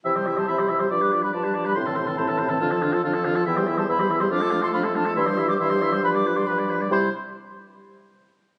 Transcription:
<<
  \new Staff \with { instrumentName = "Flute" } { \time 4/4 \key c \major \tempo 4 = 140 g''8. a''16 b''8. c'''16 d'''8. b''16 a''8. b''16 | c'''4 a''2~ a''8 r8 | g''8. a''16 b''8. c'''16 d'''8. c'''16 b''8 a''8 | c'''8. d'''16 c'''4 b''16 d'''8 c'''16 b''4 |
c'''8 r2. r8 | }
  \new Staff \with { instrumentName = "Oboe" } { \time 4/4 \key c \major e''16 c''16 e''16 c''16 e''16 c''16 e''16 c''16 d''16 b'16 d''16 b'16 d''16 b'16 d''16 b'16 | c''16 a'16 c''16 a'16 c''16 a'16 c''16 a'16 f'16 a'16 f'16 a'16 f'16 a'16 f'16 a'16 | e''16 c''16 e''16 c''16 e''16 c''16 e''16 c''16 f'16 a'16 f'16 a'16 f'16 a'16 f'16 a'16 | e''16 c''16 e''16 c''16 e''16 c''16 e''16 c''16 b'16 d''16 b'16 d''16 b'16 d''16 b'16 d''16 |
c''8 r2. r8 | }
  \new Staff \with { instrumentName = "Clarinet" } { \time 4/4 \key c \major e'16 g'16 e'16 g'16 e'16 g'16 e'16 g'16 f'16 g'16 f'16 g'16 f'16 g'16 f'16 g'16 | e'16 c'16 e'16 c'16 e'16 c'16 e'16 c'16 d'16 f'16 d'16 f'16 d'16 f'16 d'16 f'16 | e'16 g'16 e'16 g'16 e'16 g'16 e'16 g'16 d'16 f'16 d'16 f'16 d'16 f'16 d'16 f'16 | e'16 g'16 e'16 g'16 e'16 g'16 e'16 g'16 f'16 g'16 f'16 g'16 f'16 g'16 f'16 g'16 |
e'8 r2. r8 | }
  \new Staff \with { instrumentName = "French horn" } { \clef bass \time 4/4 \key c \major e16 g16 e16 g16 e16 g16 e16 g16 f16 g16 f16 g16 f16 g16 f16 g16 | c16 e16 c16 e16 c16 e16 c16 e16 d16 f16 d16 f16 d16 f16 d16 f16 | e16 g16 e16 g16 e16 g16 e16 g16 f16 a16 f16 a16 f16 a16 f16 a16 | e16 g16 e16 g16 e16 g16 e16 g16 f16 g16 f16 g16 f16 g16 f16 g16 |
g8 r2. r8 | }
  \new Staff \with { instrumentName = "Bassoon" } { \clef bass \time 4/4 \key c \major c4 c4 g,4 g,4 | a,4 a,4 f,4 f,4 | e,4 e,4 f,4 f,4 | g,4 g,4 g,4 g,4 |
c8 r2. r8 | }
>>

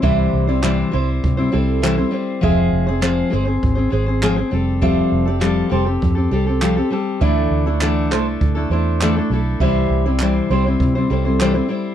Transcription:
<<
  \new Staff \with { instrumentName = "Steel-string acoustic guitar" } { \time 4/4 \key c \major \tempo 4 = 100 e''16 r8 d''8 r16 c''16 r8. a'8. r8. | e''16 r8 d''8 r16 c''16 r8. aes'8. r8. | e''16 r8 d''8 r16 c''16 r8. a'8. r8. | e''16 r8 d''8 r16 c''16 r8. c''8. r8. |
e''16 r8 d''8 r16 c''16 r8. a'8. r8. | }
  \new Staff \with { instrumentName = "Steel-string acoustic guitar" } { \time 4/4 \key c \major <c e g c' e' c''>8. <g c' e' c''>16 <c e g c' e' c''>8 <g c' e' c''>8. <g c' e' c''>16 <g c' e' c''>8 <c e g c' e' c''>16 <g c' e' c''>16 <g c' e' c''>8 | <f aes c' aes' c''>8. <c' aes' c''>16 <f aes c' aes' c''>8 <aes c' aes' c''>16 <c' aes' c''>8 <c' aes' c''>16 <aes c' aes' c''>16 <c' aes' c''>16 <f aes c' aes' c''>16 <c' aes' c''>16 <g c' g' a'>8 | <f g c' g' a'>8. <c' g' a'>16 <f g c' g' a'>8 <g c' g' a'>16 <c' g' a'>8 <c' g' a'>16 <g c' g' a'>16 <c' g' a'>16 <f g c' g' a'>16 <c' g' a'>16 <g c' g' a'>8 | <d e a d' e' a'>8. <a d' e' a'>16 <d e a d' e' a'>8 <a d' e' a'>8. <a d' e' a'>16 <a d' e' a'>8 <d e a d' e' a'>16 <a d' e' a'>16 <a d' e' a'>8 |
<c e g c' e' c''>8. <g c' e' c''>16 <c e g c' e' c''>8 <g c' e' c''>16 <g c' e' c''>8 <g c' e' c''>16 <g c' e' c''>16 <g c' e' c''>16 <c e g c' e' c''>16 <g c' e' c''>16 <g c' e' c''>8 | }
  \new Staff \with { instrumentName = "Fingered electric bass" } { \clef bass \time 4/4 \key c \major c,8 c,4 c,8 c8 c,4 r8 | f,,8 f,,4 g,,8 aes,,8 aes,,4 f,,8~ | f,,8 f,,4 f,,8 f,8 c,4 r8 | d,8 d,4 c,8 d,8 e,4 b,,8 |
c,8 c,4 c,8 c8 c,4 r8 | }
  \new DrumStaff \with { instrumentName = "Drums" } \drummode { \time 4/4 bd4 hc4 bd4 hc4 | bd4 hc4 bd4 hc4 | bd4 hc4 bd4 hc4 | bd4 hc8 hc8 bd4 hc4 |
bd4 hc4 bd4 hc4 | }
>>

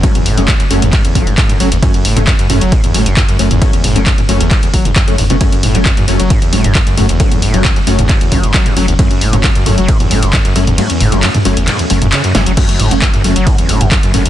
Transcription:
<<
  \new Staff \with { instrumentName = "Synth stab" } { \time 4/4 \key fis \minor \tempo 4 = 134 <fis a cis'>16 r8 <fis a cis'>16 r8 <fis a cis'>16 r8. <fis a cis'>16 r8. <fis a cis'>16 r16 | <fis a cis'>16 r8 <fis a cis'>16 r8 <fis a cis'>16 r8. <fis a cis'>16 r8. <fis a cis'>16 r16 | <fis a cis'>16 r8 <fis a cis'>16 r8 <fis a cis'>16 r4. <fis a cis'>16 r16 <fis a cis'>16 | <fis a cis'>16 r8 <fis a cis'>16 r8 <fis a cis'>16 r8. <fis a cis'>16 r8. <fis a cis'>16 r16 |
<fis a cis'>16 r8 <fis a cis'>16 r8 <fis a cis'>16 r8. <fis a cis'>16 r8. <fis a cis'>16 r16 | <fis a cis'>16 r8 <fis a cis'>16 r8 <fis a cis'>16 r8. <fis a cis'>16 r8. <fis a cis'>16 r16 | <fis a cis'>16 r8 <fis a cis'>16 r8 <fis a cis'>16 r8. <fis a cis'>16 r8. <fis a cis'>16 r16 | <fis a cis'>16 r8 <fis a cis'>16 r8 <fis a cis'>16 r8. <fis a cis'>16 r8. <fis a cis'>16 r16 | }
  \new Staff \with { instrumentName = "Acid bass" } { \clef bass \time 4/4 \key fis \minor gis,16 e,16 a,16 fis,16 fis,16 fis,16 fis,16 e,16 gis,16 e,16 fis16 fis,16 gis,16 fis,16 fis16 e,16 | fis,16 fis,16 a,16 fis,16 fis,16 fis,16 fis,16 fis16 gis,16 e,16 a,16 fis,16 fis,16 fis,16 fis,16 e,16 | gis,16 e,16 a,16 fis,16 fis,16 fis,16 fis,16 e,16 gis,16 e,16 fis16 e,16 fis,16 fis,16 e,16 b,16 | fis,16 fis,16 a,16 fis,16 fis,16 fis,16 fis,16 fis16 gis,16 e,16 a,16 fis,16 fis,16 fis,16 fis,16 e,16 |
gis,16 e,16 a,16 fis,16 r16 fis,16 fis,16 e,16 gis,16 e,16 fis16 fis,16 fis16 fis,16 fis16 e,16 | fis,16 fis,16 a,16 fis,16 fis,16 fis,16 fis,16 fis16 gis,16 e,16 a,16 fis,16 fis,16 fis,16 fis,16 e,16 | gis,16 e,16 a,16 fis,16 fis,16 fis,16 fis,16 e,16 gis,16 e,16 fis,16 fis,16 cis16 fis,16 e16 fis16 | fis,16 fis,16 a,16 fis,16 fis,16 fis,16 fis,16 fis16 gis,16 e,16 a,16 fis,16 fis,16 fis,16 fis,16 e,16 | }
  \new Staff \with { instrumentName = "Sub bass" } { \clef bass \time 4/4 \key fis \minor r8 fis,,16 fis,,16 r8 fis,,16 fis,,16 r8 fis,,16 fis,,16 r8 fis,,16 fis,,16 | r8 fis,,16 fis,,16 r8 fis,,16 fis,,16 r8 fis,,16 fis,,16 r8 fis,,16 fis,,16 | r8 fis,,16 fis,,16 r8 fis,,16 fis,,16 r8 fis,,16 fis,,16 r8 fis,,16 fis,,16 | r8 fis,,16 fis,,16 r8 fis,,16 fis,,16 r8 fis,,16 fis,,16 r8 fis,,16 fis,,16 |
r8 fis,,16 fis,,16 r8 fis,,16 fis,,16 r8 fis,,16 fis,,16 r8 fis,,16 fis,,16 | r8 fis,,16 fis,,16 r8 fis,,16 fis,,16 r8 fis,,16 fis,,16 r8 fis,,16 fis,,16 | r8 fis,,16 fis,,16 r8 fis,,16 fis,,16 r8 fis,,16 fis,,16 r8 fis,,16 fis,,16 | r8 fis,,16 fis,,16 r8 fis,,16 fis,,16 r8 fis,,16 fis,,16 r8 fis,,16 fis,,16 | }
  \new DrumStaff \with { instrumentName = "Drums" } \drummode { \time 4/4 <hh bd cymr>16 <hh toml>16 hho16 hh16 <hc hh bd cymr toml>16 hh16 hho16 <hh toml>16 <hc hh bd cymr>16 hh16 <hho bd toml>16 hh16 <hc hh bd cymr>16 <hh toml>16 hho16 hh16 | <hh bd cymr toml>16 hh16 hho16 <hh toml>16 <hc hh bd cymr>16 hh16 <hho toml>16 hh16 <hh bd cymr>16 <hh toml>16 hho16 hh16 <hc hh bd cymr toml>16 hh16 hho16 <hh toml>16 | <hh bd cymr>16 hh16 <hho toml>16 hh16 <hc hh bd cymr>16 <hh toml>16 hho16 hh16 <hc hh bd cymr toml>16 hh16 <hho bd>16 <hh toml>16 <hc hh bd cymr>16 hh16 <hho toml>16 hh16 | <hh bd cymr>16 hh16 <hho toml>16 hh16 <hc hh bd cymr>16 <hh toml>16 hho16 hh16 <hh bd cymr toml>16 hh16 hho16 <hh toml>16 <hc hh bd cymr>16 hh16 <hho toml>16 hh16 |
<hh bd cymr>16 <hh toml>16 hho16 hh16 <hc hh bd cymr toml>16 hh16 hho16 <hh toml>16 <hc hh bd cymr>16 hh16 <hho bd toml>16 hh16 <hc hh bd cymr>16 <hh toml>16 hho16 hh16 | <hh bd cymr toml>16 hh16 hho16 <hh toml>16 <hc hh bd cymr>16 hh16 <hho toml>16 hh16 <hh bd cymr>16 <hh toml>16 hho16 hh16 <hc hh bd cymr toml>16 hh16 hho16 <hh toml>16 | <hh cymr>16 hh16 <hho toml>16 hh16 <hc hh cymr>16 <hh toml>16 hho16 hh16 <hc hh cymr toml>16 hh16 hho16 <hh toml>16 <hc hh cymr>16 hh16 <hho sn toml>16 hh16 | <cymc hh bd cymr>16 hh16 <hho toml>16 hh16 <hc hh bd cymr>16 <hh toml>16 hho16 hh16 <hh bd cymr toml>16 hh16 hho16 <hh toml>16 <hc hh bd cymr>16 hh16 <hho toml>16 hh16 | }
>>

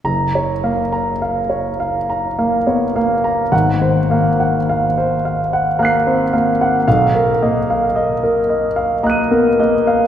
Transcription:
<<
  \new Staff \with { instrumentName = "Grand piano" } { \time 3/4 \key fis \major \tempo 4 = 55 << { ais''8 r2 r8 | fis''8 r4. <ais'' fis''' bis'''>4 | eis''8 r4. <ais'' fis''' dis''''>4 | } \\ { r16 cis''16 eis''16 ais''16 eis''16 cis''16 eis''16 ais''16 eis''16 cis''16 eis''16 ais''16 | r16 bis'16 eis''16 fis''16 eis''16 bis'16 eis''16 fis''16 eis''16 bis'16 eis''16 fis''16 | r16 ais'16 dis''16 eis''16 dis''16 ais'16 dis''16 eis''16 dis''16 ais'16 dis''16 eis''16 | } >> }
  \new Staff \with { instrumentName = "Grand piano" } { \time 3/4 \key fis \major fis,,8 ais8 r4 ais16 b16 ais8 | gis,,8 ais8 r4 ais16 bis16 ais8 | b,,8 ais8 r4 ais16 b16 ais8 | }
>>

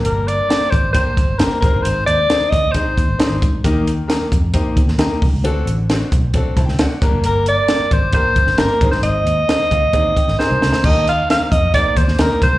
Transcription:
<<
  \new Staff \with { instrumentName = "Alto saxophone" } { \time 4/4 \key ees \major \tempo 4 = 133 bes'8 d''4 c''8 c''4 bes'8 bes'8 | c''8 d''4 ees''8 c''4. r8 | r1 | r1 |
bes'8 d''4 c''8 c''4 bes'8. c''16 | ees''2. c''4 | ees''8 f''8 f''8 ees''8 d''8 c''8 bes'8 c''8 | }
  \new Staff \with { instrumentName = "Grand piano" } { \time 4/4 \key ees \major << { r1 | r1 | r1 | r2 \tuplet 3/2 { r8. <fes' c'' a''>16 g''8 } <fis' d'' fis''>8 g''8 |
r1 | r4. f''8 ees''8 g''8 aes''8 bes''8 | r1 | } \\ { <bes d' g' bes'>8 r8 <bes d' g' c''>8 r8 <bes d' g' c''>8 r8 <bes d' g' c''>8 <c' ees' aes' c''>8~ | <c' ees' aes' c''>8 r8 <c' ees' aes' c''>8 r8 <c' ees' aes' c''>8 r8 <c' ees' aes' d''>8 r8 | <bes ees' g' bes'>8 r8 <bes ees' g' bes'>8 r8 <bes ees' g' c''>8 r8 <bes ees' g' bes'>8 r8 | <c' d' fis' a'>8 r8 <c' d' fis' c''>8 r8 <c' d' fis' a'>8 r4 <bes d' g' bes'>8~ |
<bes d' g' bes'>8 r8 <bes d' g' bes'>8 r8 <bes d' g' bes'>8 r8 <bes d' g' bes'>8 <c' ees' aes' c''>8~ | <c' ees' aes' c''>8 r8 <c' ees' aes' c''>8 r8 <c' ees' aes' d''>8 r8 <c' ees' aes' bes'>8 r8 | <bes ees' g' bes'>8 r8 <bes ees' g' c''>8 r8 <bes ees' g' c''>8 r8 <bes ees' g' bes'>8 r8 | } >> }
  \new Staff \with { instrumentName = "Grand piano" } { \clef bass \time 4/4 \key ees \major g,4 r2 r8 aes,8~ | aes,4 r2. | ees4. r2 r8 | d4. r2 g,8~ |
g,4 r2 r8 aes,8~ | aes,4 r2. | ees4. r2 r8 | }
  \new Staff \with { instrumentName = "Fingered electric bass" } { \clef bass \time 4/4 \key ees \major g,,4 r8 aes,,8. r16 g,,16 g,,16 g,,16 r16 aes,,16 g,,16 | aes,,8 ees,8 r8 d,8. r16 ees,16 aes,,16 r16 aes,,16 aes,8 | ees,4 r8 f,8. r16 ees,16 ees,16 ees,16 r16 c,16 des,16 | d,8 a,,4 ces,8. r16 c,16 d,8 r16 g,,16 ges,,16 |
g,,4 r8 aes,,8. r16 g,,16 g,,16 g,,16 r16 aes,,16 g,,16 | aes,,8 ees,8 r8 d,8 ees,8 r16 aes,,16 r16 c,16 des,16 d,16 | ees,4 r8 f,8. r16 ees,16 ees,16 ees,16 r16 c,16 des,16 | }
  \new DrumStaff \with { instrumentName = "Drums" } \drummode { \time 4/4 hh8 hh8 <hh sn>8 <hh bd>8 <hh bd>8 <hh bd>8 <hh sn>8 <hh bd>8 | hh8 hh8 <hh sn>8 <hh bd>8 <hh bd>8 <hh bd>8 <hh sn>8 <hh bd>8 | <hh bd>8 hh8 <hh sn>8 <hh bd>8 <hh bd>8 <hh bd>16 sn16 <hh sn>8 <hho bd>8 | hh8 hh8 <hh sn>8 <hh bd>8 <hh bd>8 <hh bd>16 sn16 <hh sn>8 <hh bd>8 |
hh8 hh8 <hh sn>8 <hh bd>8 <hh bd>8 <hh bd>16 sn16 <hh sn>8 <hh bd>16 sn16 | hh8 hh8 <hh sn>8 <hh bd>8 <hh bd>8 <hh bd>16 sn16 sn8 sn16 sn16 | <cymc bd>8 hh8 <hh sn>8 <hh bd>8 <hh bd>8 <hh bd>16 sn16 <hh sn>8 <hh bd>8 | }
>>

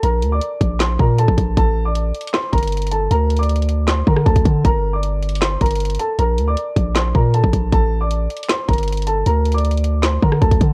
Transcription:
<<
  \new Staff \with { instrumentName = "Grand piano" } { \time 4/4 \key bes \lydian \tempo 4 = 156 <bes' bes''>8. <d'' d'''>4~ <d'' d'''>16 <c'' c'''>8 <bes' bes''>8 <a' a''>4 | <a' a''>8. <d'' d'''>4~ <d'' d'''>16 <c'' c'''>8 <bes' bes''>4 <a' a''>8 | <bes' bes''>8. <d'' d'''>4~ <d'' d'''>16 <c'' c'''>8 <bes' bes''>8 <a' a''>4 | <bes' bes''>8. <d'' d'''>4~ <d'' d'''>16 <c'' c'''>8 <bes' bes''>4 <a' a''>8 |
<bes' bes''>8. <d'' d'''>4~ <d'' d'''>16 <c'' c'''>8 <bes' bes''>8 <a' a''>4 | <a' a''>8. <d'' d'''>4~ <d'' d'''>16 <c'' c'''>8 <bes' bes''>4 <a' a''>8 | <bes' bes''>8. <d'' d'''>4~ <d'' d'''>16 <c'' c'''>8 <bes' bes''>8 <a' a''>4 | }
  \new Staff \with { instrumentName = "808-style bass" } { \clef bass \time 4/4 \key bes \lydian bes,,8 d,8 r8 bes,,4 bes,8. bes,,16 bes,,8 | a,,4. r4 g,,4. | d,2~ d,8 d8 d,16 d,16 d8 | g,,2~ g,,8 g,,4 r8 |
bes,,8 d,8 r8 bes,,4 bes,8. bes,,16 bes,,8 | a,,4. r4 g,,4. | d,2~ d,8 d8 d,16 d,16 d8 | }
  \new DrumStaff \with { instrumentName = "Drums" } \drummode { \time 4/4 hh8 hh8 hh8 <hh bd>8 <hc hh sn>8 bd8 hh16 bd16 <hh bd>8 | <hh bd>4 \tuplet 3/2 { hh16 r16 r16 hh16 hh16 hh16 } <hc hh sn>8 <hh bd>32 hh32 hh32 hh32 hh32 hh32 hh32 hh32 hh8 | \tuplet 3/2 { hh16 r16 r16 hh16 hh16 hh16 hh16 hh16 hh16 hh16 r16 r16 } <hc hh sn>8 bd16 ss16 <hh bd>16 <hh bd>16 <hh bd>8 | <hh bd>4 \tuplet 3/2 { hh16 r16 r16 hh16 hh16 hh16 } <hc hh sn>8 <hh bd>32 hh32 hh32 hh32 hh32 hh32 hh32 hh32 hh8 |
hh8 hh8 hh8 <hh bd>8 <hc hh sn>8 bd8 hh16 bd16 <hh bd>8 | <hh bd>4 \tuplet 3/2 { hh16 r16 r16 hh16 hh16 hh16 } <hc hh sn>8 <hh bd>32 hh32 hh32 hh32 hh32 hh32 hh32 hh32 hh8 | \tuplet 3/2 { hh16 r16 r16 hh16 hh16 hh16 hh16 hh16 hh16 hh16 r16 r16 } <hc hh sn>8 bd16 ss16 <hh bd>16 <hh bd>16 <hh bd>8 | }
>>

